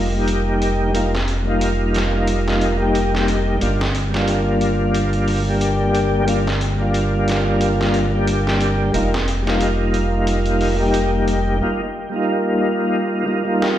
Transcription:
Already playing: F1 F4
0.10 G3 A#3
0.14 D#4 G4
0.28 closed hi-hat
0.62 closed hi-hat
0.93 G3 A#3 D#4 F4, closed hi-hat
1.15 snare
1.28 closed hi-hat
1.43 G3 A#3
1.47 D#4 F4
1.61 closed hi-hat
1.94 snare, closed hi-hat
2.27 closed hi-hat
2.48 snare
2.61 closed hi-hat
2.76 G3 A#3
2.80 D#4 G4
2.95 closed hi-hat
3.15 snare
3.28 closed hi-hat
3.59 G1 G3 A#3 D4 F4, closed hi-hat
3.81 snare
3.95 closed hi-hat
4.09 G3 A#3
4.13 D4 F4, snare
4.28 closed hi-hat
4.61 closed hi-hat
4.94 closed hi-hat
5.13 closed hi-hat
5.28 open hi-hat
5.42 G3 A#3
5.47 D4 G4
5.61 closed hi-hat
5.95 closed hi-hat
6.25 G3 A#3 D4 F4, closed hi-hat
6.47 snare
6.61 closed hi-hat
6.75 G3 A#3
6.80 D4 F4
6.94 closed hi-hat
7.28 snare, closed hi-hat
7.61 closed hi-hat
7.81 snare
7.94 closed hi-hat
8.09 G3 A#3
8.13 D4 G4
8.27 closed hi-hat
8.47 snare
8.61 closed hi-hat
8.92 F1 G3 A#3 D#4 F4, closed hi-hat
9.14 snare
9.28 closed hi-hat
9.42 G3 A#3
9.47 D#4 F4, snare
9.61 closed hi-hat
9.94 closed hi-hat
10.27 closed hi-hat
10.46 closed hi-hat
10.61 open hi-hat
10.76 G3 A#3
10.80 D#4 G4
10.94 closed hi-hat
11.28 closed hi-hat
11.60 G3 A#3 D#4 F4
12.09 G3 A#3
12.14 D#4 F4
13.26 G3 A#3 D#4 F4
13.44 G3 A#3 D#4 F4
13.62 snare

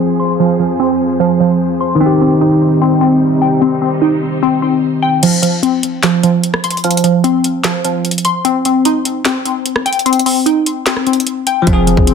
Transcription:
Already playing: F2 F3 C4 G#4 C5
0.20 C6
0.40 F3
0.60 F3
0.80 C4
1.20 F3
1.40 F3
1.81 C6
1.95 D#3
2.00 C3 G3 C4 D#4
2.06 G4
2.21 C4
2.41 D#4
2.81 C4
3.01 C4
3.41 G5
3.62 C4
3.82 C4
4.02 D#4
4.43 C4
4.62 C4
5.02 G5
5.23 F3, closed hi-hat, crash
5.42 F3, closed hi-hat
5.63 C4, closed hi-hat
5.83 closed hi-hat
6.03 F3, snare, clap, closed hi-hat
6.23 F3, closed hi-hat
6.44 closed hi-hat
6.54 cross-stick
6.64 C6, closed hi-hat
6.71 closed hi-hat
6.77 closed hi-hat
6.84 F3, closed hi-hat
6.91 closed hi-hat
6.97 closed hi-hat
7.04 F3, closed hi-hat
7.24 C4, closed hi-hat
7.44 closed hi-hat
7.64 F3, snare, clap, closed hi-hat
7.85 F3, closed hi-hat
8.05 closed hi-hat
8.11 closed hi-hat
8.18 closed hi-hat
8.25 C6, closed hi-hat
8.45 C4, closed hi-hat
8.65 C4, closed hi-hat
8.85 D#4, closed hi-hat
9.05 closed hi-hat
9.25 C4, snare, clap, closed hi-hat
9.45 C4, closed hi-hat
9.66 closed hi-hat
9.76 cross-stick
9.86 G5, closed hi-hat
9.93 closed hi-hat
9.99 closed hi-hat
10.06 C4, closed hi-hat
10.13 closed hi-hat
10.19 closed hi-hat
10.26 C4, open hi-hat
10.46 D#4, closed hi-hat
10.66 closed hi-hat
10.86 C4, snare, clap, closed hi-hat
10.97 cross-stick
11.07 C4, closed hi-hat
11.13 closed hi-hat
11.20 closed hi-hat
11.27 closed hi-hat
11.47 G5, closed hi-hat
11.62 F3
11.67 F1 F3 C4, kick, closed hi-hat
11.73 G#4
11.87 F3, closed hi-hat
11.97 F1, kick
12.07 C4, closed hi-hat

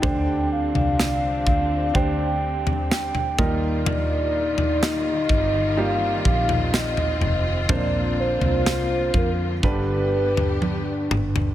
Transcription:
Already playing: G3
0.02 D2 D3 C4 D4 G4 C5 G5, kick, floor tom
0.52 F5
0.75 C2, floor tom
0.99 snare
1.46 D2, kick
1.94 D2 D4 G4 C5 G5, kick
2.67 floor tom
2.91 G5, snare
3.15 floor tom
3.38 D#2 A#2 D#3 G3 A#3 D#4 F4 A#4, kick, floor tom
3.86 D5, floor tom
4.58 floor tom
4.83 D#5, snare
5.29 G1 C4, kick
5.77 G3 A#3 D#4 F4 G4 F5
6.25 A#1 F5, kick
6.49 floor tom
6.74 D#5, snare
6.97 floor tom
7.20 F1, floor tom
7.68 A#1 D3 A#3 C4 D4 F4 C5 D5, kick, floor tom
8.20 C5
8.41 C2, floor tom
8.66 C5, snare
9.14 F2 A#4, kick
9.63 G1 G2 D3 G3 B3 D4 G4 B4, kick
10.37 floor tom
10.62 D4, high tom
11.11 G1, mid tom
11.36 floor tom

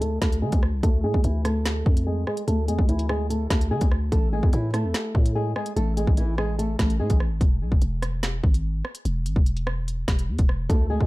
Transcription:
Already playing: D2
0.01 A3 A4, closed hi-hat
0.22 D2 A3 A4, kick, snare
0.32 closed hi-hat
0.42 D3 G#3 G#4
0.52 D2, kick, closed hi-hat
0.63 cross-stick
0.73 C2
0.83 D2 A3 A4, kick, closed hi-hat
1.04 A2 G#3 G#4
1.14 D2, kick
1.24 D2 E3 E4, closed hi-hat
1.45 A3 A4, cross-stick, closed hi-hat
1.66 snare, closed hi-hat
1.86 F2, kick
1.97 closed hi-hat
2.07 G#3 G#4
2.27 G#3 G#4, cross-stick
2.37 closed hi-hat
2.48 D2 A3 A4, closed hi-hat
2.68 F2 G#3 G#4, closed hi-hat
2.79 D2, kick
2.89 E3 E4, closed hi-hat
2.99 closed hi-hat
3.09 G#3 G#4, cross-stick
3.30 A3 A4, closed hi-hat
3.50 D2 A3 A4, kick, snare
3.61 closed hi-hat
3.71 D3 G#3 G#4
3.81 D2, kick, closed hi-hat
3.92 cross-stick
4.12 A1 A3 A4, kick, closed hi-hat
4.33 G#3 G#4
4.43 E2, kick
4.53 A2 E3 E4, closed hi-hat
4.74 A3 A4, cross-stick, closed hi-hat
4.84 E2
4.94 snare, closed hi-hat
5.15 A2, kick
5.26 closed hi-hat
5.35 G#3 G#4
5.56 G#3 G#4, cross-stick
5.66 closed hi-hat
5.76 A1 A3 A4, closed hi-hat
5.97 G#3 G#4, closed hi-hat
6.07 A1, kick
6.17 E3 E4, closed hi-hat
6.38 G#3 G#4, cross-stick
6.59 A3 A4, closed hi-hat
6.79 A1 A3 A4, kick, snare
6.90 closed hi-hat
7.00 A2 G#3 G#4
7.10 A1, kick, closed hi-hat
7.20 cross-stick
7.31 G#1
7.41 E1, kick, closed hi-hat
7.61 B1
7.72 E1, kick
7.82 E1, closed hi-hat
8.02 cross-stick, closed hi-hat
8.23 snare, closed hi-hat
8.44 G#1, kick
8.54 closed hi-hat
8.85 cross-stick
8.95 closed hi-hat
9.05 E1, closed hi-hat
9.26 G#1, closed hi-hat
9.36 E1, kick
9.46 closed hi-hat
9.57 closed hi-hat
9.67 cross-stick
9.88 closed hi-hat
10.08 E1, kick, snare
10.19 closed hi-hat
10.29 E2
10.39 E1, kick, closed hi-hat
10.49 cross-stick
10.70 D2 A3 A4, kick, closed hi-hat
10.90 G#3 G#4
11.00 A2, kick

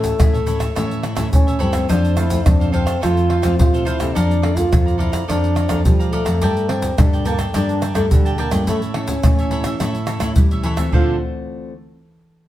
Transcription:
Already playing: A2 E3 A3 C#4 E4 A4 C#5 E5
0.04 pandeiro, shaker, surdo
0.19 A2 E3 A3 C#4, pandeiro, tamborim, shaker, surdo
0.33 A4 C#5 E5, pandeiro, shaker
0.46 E3 A3 C#4 E4 A4 C#5 E5, pandeiro, shaker
0.59 A4 C#5 E5, pandeiro, tamborim, shaker, surdo
0.75 A2 E3 A3 C#4 E4 A4 C#5 E5, pandeiro, tamborim, shaker, surdo
0.91 pandeiro, shaker
1.03 E4 A4 C#5 E5, pandeiro, tamborim, shaker
1.15 A2 E3 A3 C#4 E4 A4 C#5 E5, pandeiro, tamborim, shaker, surdo
1.33 A2 E3 C#4, pandeiro, shaker, surdo
1.47 A4 C#5 E5, pandeiro, shaker
1.59 G2 C4 E4 A4 C#5 E5, pandeiro
1.72 F3 A3 C4 A4 C#5 E5, pandeiro, tamborim, shaker, surdo
1.89 F2 D4 F4 A4 C5 F5, pandeiro, shaker, surdo
2.05 pandeiro, shaker
2.16 F3 A3 C4 E4 F4 A4 C5 F5, pandeiro, tamborim, shaker
2.30 F3 A3 C4, pandeiro, shaker, surdo
2.46 F2 C3 F3 A3 C4 D4, pandeiro, tamborim, shaker, surdo
2.60 A4 C5 F5, pandeiro, shaker
2.72 C4 F4 A4 C5 F5, pandeiro, surdo
2.86 A4 C5 F5, pandeiro, tamborim, shaker, surdo
3.01 F2 F3 A3 C4 F4 A4 C5 F5, pandeiro, tamborim, shaker, surdo
3.17 pandeiro, shaker
3.29 F4 A4 C5 F5, pandeiro, tamborim
3.42 F2 F3 A3 C4 F4 A4 C5 F5, pandeiro, tamborim, shaker, surdo
3.59 C3 F4, pandeiro, shaker, surdo
3.73 A4 C5 F5, pandeiro, shaker
3.85 E4 F4 A4 C5 F5, pandeiro, shaker
3.98 C3 A#3 D4 A4 C5 F5, pandeiro, tamborim, shaker, surdo
4.15 F2 F3 D4 A4 D5 F5 A#5, pandeiro, shaker, surdo
4.31 pandeiro, shaker
4.42 A#3 D4 A4 D5 F5 A#5, pandeiro, tamborim
4.56 A#3 D4 F4 A4, pandeiro, shaker, surdo
4.72 F2 F3 A#3 D4 A4, pandeiro, tamborim, shaker, surdo
4.86 D5 F5 A#5, pandeiro, shaker
4.98 E4 A4 D5 F5 A#5, pandeiro, surdo
5.12 D5 F5 A#5, pandeiro, tamborim, shaker, surdo
5.28 F2 F3 A#3 D4 A4 D5 F5 A#5, pandeiro, tamborim, shaker, surdo
5.44 pandeiro, shaker
5.55 A4 D5 F5 A#5, pandeiro, tamborim, shaker
5.69 F2 A#3 D4 A4 D5 F5 A#5, pandeiro, tamborim, shaker, surdo
5.85 F3 G3, pandeiro, shaker, surdo
5.99 D5 F5 A#5, pandeiro, shaker
6.12 A3 A4 D5 F5 A#5, pandeiro
6.25 F2 D4 A4 D5 F5 A#5, pandeiro, tamborim, shaker, surdo
6.41 G2 G3 A#4 D5 G5 A5, pandeiro, shaker, surdo
6.57 pandeiro, shaker
6.68 A#3 C4 D4 A4 A#4 D5 G5 A5, pandeiro, tamborim
6.82 pandeiro, shaker, surdo
6.98 G2 D3 A#3 D4 A4, pandeiro, tamborim, shaker, surdo
7.13 D5 G5 A5, pandeiro, shaker
7.25 A#3 D4 A4 A#4 D5 G5 A5, pandeiro, shaker
7.38 D5 G5 A5, pandeiro, tamborim, shaker, surdo
7.54 G2 G3 A#3 D4 A4 A#4 D5 G5 A5, pandeiro, tamborim, shaker, surdo
7.69 pandeiro, shaker
7.81 A#4 D5 G5 A5, pandeiro, tamborim, shaker
7.94 G2 A3 A#3 D4 A4 A#4 D5 G5 A5, pandeiro, tamborim, shaker, surdo
8.11 D3 G3, pandeiro, shaker, surdo
8.25 D5 G5 A5, pandeiro, shaker
8.38 A#3 A#4 D5 G5 A5, pandeiro
8.51 G2 A3 C#4 E4 D5 G5 A5, pandeiro, tamborim, shaker, surdo
8.67 A2 A3 E4 A4 C#5 E5, pandeiro, shaker, surdo
8.82 pandeiro, shaker
8.94 A3 C#4 E4 A4 C#5 E5, pandeiro, tamborim
9.08 A3 C#4 E4, pandeiro, shaker, surdo
9.23 A2 E3 A3 C#4 E4, pandeiro, tamborim, shaker, surdo
9.39 A4 C#5 E5, pandeiro, shaker
9.51 E4 A4 C#5 E5, pandeiro
9.64 A4 C#5 E5, pandeiro, tamborim, shaker, surdo
9.80 A2 A3 C#4 E4 A4 C#5 E5, pandeiro, tamborim, shaker, surdo
9.95 pandeiro, shaker
10.07 E4 A4 C#5 E5, pandeiro, tamborim, shaker
10.20 A2 A3 C#4 E4 A4 C#5 E5, pandeiro, tamborim, shaker, surdo
10.36 E3 G3, pandeiro, shaker, surdo
10.51 A4 C#5 E5, pandeiro, shaker
10.63 E3 E4 A4 C#5 E5, pandeiro
10.77 A3 C4 F4 A4 C#5 E5, pandeiro, tamborim, shaker, surdo
10.92 D3 A3 C4 D4 F4 A4 C5 F5, surdo

